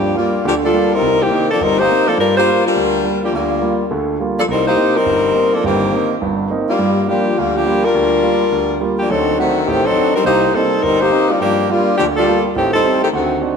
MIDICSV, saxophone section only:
0, 0, Header, 1, 2, 480
1, 0, Start_track
1, 0, Key_signature, -2, "minor"
1, 0, Tempo, 288323
1, 1686, Time_signature, 4, 2, 24, 8
1, 22586, End_track
2, 0, Start_track
2, 0, Title_t, "Saxophone section"
2, 0, Program_c, 0, 65
2, 0, Note_on_c, 0, 53, 65
2, 0, Note_on_c, 0, 58, 66
2, 0, Note_on_c, 0, 62, 67
2, 0, Note_on_c, 0, 67, 78
2, 267, Note_off_c, 0, 58, 0
2, 269, Note_off_c, 0, 67, 0
2, 270, Note_off_c, 0, 53, 0
2, 272, Note_off_c, 0, 62, 0
2, 289, Note_on_c, 0, 65, 69
2, 292, Note_on_c, 0, 55, 65
2, 292, Note_on_c, 0, 62, 61
2, 295, Note_on_c, 0, 58, 62
2, 715, Note_off_c, 0, 65, 0
2, 717, Note_off_c, 0, 55, 0
2, 717, Note_off_c, 0, 62, 0
2, 718, Note_off_c, 0, 58, 0
2, 780, Note_on_c, 0, 67, 80
2, 786, Note_on_c, 0, 53, 71
2, 786, Note_on_c, 0, 58, 70
2, 787, Note_on_c, 0, 62, 71
2, 899, Note_off_c, 0, 67, 0
2, 903, Note_off_c, 0, 53, 0
2, 903, Note_off_c, 0, 58, 0
2, 904, Note_off_c, 0, 62, 0
2, 1068, Note_on_c, 0, 55, 76
2, 1074, Note_on_c, 0, 69, 88
2, 1075, Note_on_c, 0, 62, 78
2, 1079, Note_on_c, 0, 65, 79
2, 1491, Note_off_c, 0, 55, 0
2, 1494, Note_off_c, 0, 69, 0
2, 1495, Note_off_c, 0, 62, 0
2, 1497, Note_off_c, 0, 65, 0
2, 1548, Note_on_c, 0, 60, 73
2, 1549, Note_on_c, 0, 55, 80
2, 1551, Note_on_c, 0, 63, 81
2, 1552, Note_on_c, 0, 70, 96
2, 2003, Note_off_c, 0, 60, 0
2, 2004, Note_off_c, 0, 55, 0
2, 2005, Note_off_c, 0, 63, 0
2, 2005, Note_off_c, 0, 70, 0
2, 2021, Note_on_c, 0, 58, 72
2, 2024, Note_on_c, 0, 67, 85
2, 2029, Note_on_c, 0, 60, 78
2, 2030, Note_on_c, 0, 51, 71
2, 2481, Note_off_c, 0, 58, 0
2, 2482, Note_off_c, 0, 67, 0
2, 2484, Note_off_c, 0, 60, 0
2, 2485, Note_off_c, 0, 51, 0
2, 2511, Note_on_c, 0, 62, 71
2, 2512, Note_on_c, 0, 69, 88
2, 2515, Note_on_c, 0, 58, 74
2, 2516, Note_on_c, 0, 53, 72
2, 2663, Note_off_c, 0, 62, 0
2, 2663, Note_off_c, 0, 69, 0
2, 2665, Note_off_c, 0, 53, 0
2, 2665, Note_off_c, 0, 58, 0
2, 2694, Note_on_c, 0, 60, 85
2, 2695, Note_on_c, 0, 55, 82
2, 2696, Note_on_c, 0, 63, 81
2, 2701, Note_on_c, 0, 70, 93
2, 2963, Note_off_c, 0, 55, 0
2, 2963, Note_off_c, 0, 60, 0
2, 2964, Note_off_c, 0, 63, 0
2, 2966, Note_off_c, 0, 70, 0
2, 2975, Note_on_c, 0, 67, 87
2, 2976, Note_on_c, 0, 58, 88
2, 2983, Note_on_c, 0, 63, 88
2, 2986, Note_on_c, 0, 72, 102
2, 3438, Note_off_c, 0, 67, 0
2, 3439, Note_off_c, 0, 58, 0
2, 3442, Note_off_c, 0, 63, 0
2, 3443, Note_off_c, 0, 72, 0
2, 3455, Note_on_c, 0, 69, 86
2, 3459, Note_on_c, 0, 53, 70
2, 3463, Note_on_c, 0, 58, 74
2, 3465, Note_on_c, 0, 62, 74
2, 3627, Note_off_c, 0, 69, 0
2, 3629, Note_off_c, 0, 53, 0
2, 3631, Note_off_c, 0, 58, 0
2, 3632, Note_off_c, 0, 62, 0
2, 3645, Note_on_c, 0, 65, 75
2, 3647, Note_on_c, 0, 55, 78
2, 3648, Note_on_c, 0, 62, 78
2, 3650, Note_on_c, 0, 70, 89
2, 3900, Note_off_c, 0, 65, 0
2, 3901, Note_off_c, 0, 55, 0
2, 3901, Note_off_c, 0, 62, 0
2, 3902, Note_off_c, 0, 70, 0
2, 3947, Note_on_c, 0, 72, 97
2, 3951, Note_on_c, 0, 67, 83
2, 3957, Note_on_c, 0, 65, 82
2, 3961, Note_on_c, 0, 58, 81
2, 4373, Note_off_c, 0, 72, 0
2, 4375, Note_off_c, 0, 67, 0
2, 4378, Note_off_c, 0, 65, 0
2, 4380, Note_off_c, 0, 58, 0
2, 4419, Note_on_c, 0, 62, 79
2, 4421, Note_on_c, 0, 65, 82
2, 4425, Note_on_c, 0, 70, 94
2, 4431, Note_on_c, 0, 55, 81
2, 5296, Note_off_c, 0, 62, 0
2, 5297, Note_off_c, 0, 65, 0
2, 5299, Note_off_c, 0, 70, 0
2, 5302, Note_off_c, 0, 55, 0
2, 5382, Note_on_c, 0, 62, 66
2, 5390, Note_on_c, 0, 58, 65
2, 5391, Note_on_c, 0, 53, 64
2, 5397, Note_on_c, 0, 67, 76
2, 5540, Note_off_c, 0, 62, 0
2, 5544, Note_off_c, 0, 53, 0
2, 5544, Note_off_c, 0, 58, 0
2, 5548, Note_off_c, 0, 67, 0
2, 5580, Note_on_c, 0, 55, 60
2, 5582, Note_on_c, 0, 58, 61
2, 5582, Note_on_c, 0, 62, 63
2, 5583, Note_on_c, 0, 65, 73
2, 6451, Note_off_c, 0, 55, 0
2, 6452, Note_off_c, 0, 58, 0
2, 6452, Note_off_c, 0, 62, 0
2, 6453, Note_off_c, 0, 65, 0
2, 7304, Note_on_c, 0, 53, 72
2, 7304, Note_on_c, 0, 62, 72
2, 7305, Note_on_c, 0, 58, 68
2, 7305, Note_on_c, 0, 69, 85
2, 7380, Note_off_c, 0, 53, 0
2, 7380, Note_off_c, 0, 62, 0
2, 7381, Note_off_c, 0, 58, 0
2, 7381, Note_off_c, 0, 69, 0
2, 7500, Note_on_c, 0, 63, 74
2, 7503, Note_on_c, 0, 55, 71
2, 7512, Note_on_c, 0, 60, 76
2, 7513, Note_on_c, 0, 70, 92
2, 7749, Note_off_c, 0, 63, 0
2, 7751, Note_off_c, 0, 55, 0
2, 7756, Note_off_c, 0, 60, 0
2, 7756, Note_off_c, 0, 70, 0
2, 7782, Note_on_c, 0, 63, 82
2, 7784, Note_on_c, 0, 58, 81
2, 7785, Note_on_c, 0, 67, 82
2, 7786, Note_on_c, 0, 72, 98
2, 8211, Note_off_c, 0, 63, 0
2, 8212, Note_off_c, 0, 58, 0
2, 8213, Note_off_c, 0, 67, 0
2, 8213, Note_off_c, 0, 72, 0
2, 8252, Note_on_c, 0, 60, 81
2, 8257, Note_on_c, 0, 63, 77
2, 8261, Note_on_c, 0, 70, 97
2, 8262, Note_on_c, 0, 55, 77
2, 9199, Note_off_c, 0, 60, 0
2, 9201, Note_off_c, 0, 63, 0
2, 9203, Note_off_c, 0, 55, 0
2, 9203, Note_off_c, 0, 70, 0
2, 9221, Note_on_c, 0, 58, 71
2, 9225, Note_on_c, 0, 69, 76
2, 9226, Note_on_c, 0, 62, 71
2, 9233, Note_on_c, 0, 53, 64
2, 9392, Note_off_c, 0, 58, 0
2, 9394, Note_off_c, 0, 62, 0
2, 9394, Note_off_c, 0, 69, 0
2, 9398, Note_off_c, 0, 53, 0
2, 9419, Note_on_c, 0, 60, 62
2, 9421, Note_on_c, 0, 51, 66
2, 9421, Note_on_c, 0, 58, 63
2, 9423, Note_on_c, 0, 67, 74
2, 10290, Note_off_c, 0, 60, 0
2, 10292, Note_off_c, 0, 51, 0
2, 10292, Note_off_c, 0, 58, 0
2, 10293, Note_off_c, 0, 67, 0
2, 11129, Note_on_c, 0, 62, 64
2, 11130, Note_on_c, 0, 55, 71
2, 11133, Note_on_c, 0, 58, 66
2, 11140, Note_on_c, 0, 65, 81
2, 11739, Note_off_c, 0, 62, 0
2, 11740, Note_off_c, 0, 55, 0
2, 11741, Note_off_c, 0, 58, 0
2, 11745, Note_off_c, 0, 65, 0
2, 11800, Note_on_c, 0, 58, 64
2, 11801, Note_on_c, 0, 53, 67
2, 11802, Note_on_c, 0, 62, 63
2, 11803, Note_on_c, 0, 67, 79
2, 12242, Note_off_c, 0, 58, 0
2, 12251, Note_off_c, 0, 62, 0
2, 12262, Note_on_c, 0, 58, 68
2, 12267, Note_off_c, 0, 53, 0
2, 12267, Note_on_c, 0, 65, 80
2, 12268, Note_off_c, 0, 67, 0
2, 12271, Note_on_c, 0, 62, 68
2, 12272, Note_on_c, 0, 55, 67
2, 12548, Note_off_c, 0, 58, 0
2, 12549, Note_off_c, 0, 62, 0
2, 12551, Note_off_c, 0, 65, 0
2, 12553, Note_off_c, 0, 55, 0
2, 12569, Note_on_c, 0, 62, 72
2, 12569, Note_on_c, 0, 67, 87
2, 12572, Note_on_c, 0, 58, 73
2, 12575, Note_on_c, 0, 53, 75
2, 13030, Note_off_c, 0, 62, 0
2, 13036, Note_off_c, 0, 67, 0
2, 13038, Note_off_c, 0, 58, 0
2, 13039, Note_off_c, 0, 53, 0
2, 13049, Note_on_c, 0, 55, 78
2, 13050, Note_on_c, 0, 62, 82
2, 13051, Note_on_c, 0, 65, 82
2, 13052, Note_on_c, 0, 70, 94
2, 14663, Note_off_c, 0, 55, 0
2, 14664, Note_off_c, 0, 62, 0
2, 14665, Note_off_c, 0, 65, 0
2, 14665, Note_off_c, 0, 70, 0
2, 14963, Note_on_c, 0, 67, 79
2, 14964, Note_on_c, 0, 62, 64
2, 14969, Note_on_c, 0, 58, 68
2, 14974, Note_on_c, 0, 53, 66
2, 15128, Note_off_c, 0, 67, 0
2, 15129, Note_off_c, 0, 62, 0
2, 15132, Note_off_c, 0, 58, 0
2, 15134, Note_off_c, 0, 53, 0
2, 15161, Note_on_c, 0, 69, 86
2, 15162, Note_on_c, 0, 54, 71
2, 15163, Note_on_c, 0, 60, 70
2, 15169, Note_on_c, 0, 63, 75
2, 15625, Note_off_c, 0, 69, 0
2, 15626, Note_off_c, 0, 54, 0
2, 15626, Note_off_c, 0, 60, 0
2, 15629, Note_off_c, 0, 63, 0
2, 15646, Note_on_c, 0, 57, 70
2, 15646, Note_on_c, 0, 60, 69
2, 15647, Note_on_c, 0, 51, 70
2, 15650, Note_on_c, 0, 66, 81
2, 16075, Note_off_c, 0, 57, 0
2, 16075, Note_off_c, 0, 60, 0
2, 16076, Note_off_c, 0, 51, 0
2, 16077, Note_off_c, 0, 66, 0
2, 16107, Note_on_c, 0, 57, 76
2, 16110, Note_on_c, 0, 67, 90
2, 16112, Note_on_c, 0, 60, 79
2, 16113, Note_on_c, 0, 51, 79
2, 16389, Note_off_c, 0, 57, 0
2, 16391, Note_off_c, 0, 60, 0
2, 16391, Note_off_c, 0, 67, 0
2, 16392, Note_off_c, 0, 51, 0
2, 16408, Note_on_c, 0, 60, 84
2, 16410, Note_on_c, 0, 69, 96
2, 16414, Note_on_c, 0, 54, 78
2, 16418, Note_on_c, 0, 63, 80
2, 16873, Note_off_c, 0, 60, 0
2, 16875, Note_off_c, 0, 69, 0
2, 16876, Note_off_c, 0, 54, 0
2, 16879, Note_off_c, 0, 63, 0
2, 16897, Note_on_c, 0, 70, 88
2, 16901, Note_on_c, 0, 60, 75
2, 16902, Note_on_c, 0, 63, 75
2, 16904, Note_on_c, 0, 55, 74
2, 17055, Note_off_c, 0, 70, 0
2, 17057, Note_off_c, 0, 60, 0
2, 17057, Note_off_c, 0, 63, 0
2, 17059, Note_off_c, 0, 55, 0
2, 17071, Note_on_c, 0, 67, 79
2, 17074, Note_on_c, 0, 58, 81
2, 17076, Note_on_c, 0, 63, 83
2, 17082, Note_on_c, 0, 72, 99
2, 17506, Note_off_c, 0, 67, 0
2, 17508, Note_off_c, 0, 58, 0
2, 17509, Note_off_c, 0, 63, 0
2, 17512, Note_off_c, 0, 72, 0
2, 17560, Note_on_c, 0, 55, 76
2, 17566, Note_on_c, 0, 69, 87
2, 17570, Note_on_c, 0, 60, 76
2, 17570, Note_on_c, 0, 63, 74
2, 18005, Note_off_c, 0, 60, 0
2, 18009, Note_off_c, 0, 55, 0
2, 18009, Note_off_c, 0, 63, 0
2, 18025, Note_on_c, 0, 60, 81
2, 18026, Note_off_c, 0, 69, 0
2, 18027, Note_on_c, 0, 70, 96
2, 18029, Note_on_c, 0, 55, 80
2, 18029, Note_on_c, 0, 63, 80
2, 18307, Note_off_c, 0, 60, 0
2, 18307, Note_off_c, 0, 70, 0
2, 18308, Note_off_c, 0, 55, 0
2, 18309, Note_off_c, 0, 63, 0
2, 18330, Note_on_c, 0, 67, 90
2, 18331, Note_on_c, 0, 63, 88
2, 18333, Note_on_c, 0, 72, 104
2, 18334, Note_on_c, 0, 58, 87
2, 18793, Note_off_c, 0, 67, 0
2, 18794, Note_off_c, 0, 63, 0
2, 18795, Note_off_c, 0, 58, 0
2, 18795, Note_off_c, 0, 72, 0
2, 18817, Note_on_c, 0, 55, 68
2, 18817, Note_on_c, 0, 65, 77
2, 18822, Note_on_c, 0, 62, 67
2, 18825, Note_on_c, 0, 58, 67
2, 18983, Note_off_c, 0, 62, 0
2, 18985, Note_off_c, 0, 55, 0
2, 18986, Note_off_c, 0, 65, 0
2, 18990, Note_off_c, 0, 58, 0
2, 19003, Note_on_c, 0, 62, 71
2, 19007, Note_on_c, 0, 67, 90
2, 19009, Note_on_c, 0, 58, 73
2, 19011, Note_on_c, 0, 53, 76
2, 19431, Note_off_c, 0, 62, 0
2, 19433, Note_off_c, 0, 67, 0
2, 19434, Note_off_c, 0, 58, 0
2, 19436, Note_off_c, 0, 53, 0
2, 19486, Note_on_c, 0, 58, 70
2, 19492, Note_on_c, 0, 55, 68
2, 19493, Note_on_c, 0, 62, 70
2, 19493, Note_on_c, 0, 65, 81
2, 19921, Note_off_c, 0, 62, 0
2, 19929, Note_off_c, 0, 58, 0
2, 19941, Note_on_c, 0, 62, 75
2, 19944, Note_on_c, 0, 67, 87
2, 19946, Note_on_c, 0, 53, 72
2, 19948, Note_off_c, 0, 55, 0
2, 19948, Note_off_c, 0, 65, 0
2, 19949, Note_on_c, 0, 58, 70
2, 20068, Note_off_c, 0, 62, 0
2, 20070, Note_off_c, 0, 67, 0
2, 20072, Note_off_c, 0, 53, 0
2, 20074, Note_off_c, 0, 58, 0
2, 20248, Note_on_c, 0, 55, 80
2, 20249, Note_on_c, 0, 62, 82
2, 20254, Note_on_c, 0, 69, 91
2, 20255, Note_on_c, 0, 65, 78
2, 20678, Note_off_c, 0, 55, 0
2, 20679, Note_off_c, 0, 62, 0
2, 20682, Note_off_c, 0, 65, 0
2, 20682, Note_off_c, 0, 69, 0
2, 20912, Note_on_c, 0, 60, 69
2, 20917, Note_on_c, 0, 57, 73
2, 20921, Note_on_c, 0, 67, 82
2, 20922, Note_on_c, 0, 51, 68
2, 21169, Note_off_c, 0, 60, 0
2, 21171, Note_off_c, 0, 57, 0
2, 21174, Note_off_c, 0, 51, 0
2, 21174, Note_off_c, 0, 67, 0
2, 21196, Note_on_c, 0, 69, 89
2, 21201, Note_on_c, 0, 60, 73
2, 21203, Note_on_c, 0, 55, 72
2, 21206, Note_on_c, 0, 63, 75
2, 21632, Note_off_c, 0, 69, 0
2, 21634, Note_off_c, 0, 60, 0
2, 21635, Note_off_c, 0, 55, 0
2, 21637, Note_off_c, 0, 63, 0
2, 21694, Note_on_c, 0, 51, 63
2, 21694, Note_on_c, 0, 57, 61
2, 21698, Note_on_c, 0, 67, 72
2, 21700, Note_on_c, 0, 60, 67
2, 21769, Note_off_c, 0, 51, 0
2, 21769, Note_off_c, 0, 57, 0
2, 21773, Note_off_c, 0, 67, 0
2, 21774, Note_off_c, 0, 60, 0
2, 21876, Note_on_c, 0, 60, 64
2, 21882, Note_on_c, 0, 66, 76
2, 21885, Note_on_c, 0, 51, 61
2, 21886, Note_on_c, 0, 57, 60
2, 22306, Note_off_c, 0, 60, 0
2, 22309, Note_off_c, 0, 66, 0
2, 22310, Note_off_c, 0, 51, 0
2, 22311, Note_off_c, 0, 57, 0
2, 22586, End_track
0, 0, End_of_file